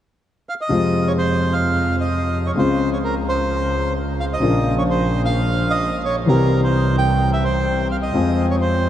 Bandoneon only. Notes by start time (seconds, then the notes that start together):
0.49 F5
0.61 D#5
1.08 C#5
1.18 C5
1.53 F5
2.01 D#5
2.46 C#5
2.58 C5
2.93 C#5
3.04 A#4
3.29 C5
4.20 F5
4.33 D#5
4.78 C#5
4.90 C5
5.25 F5
5.70 D#5
6.05 C#5
6.28 A#4
6.64 C5
6.98 G5
7.33 E5
7.44 C5
7.91 F5
8.02 D#5
8.51 C#5
8.62 C5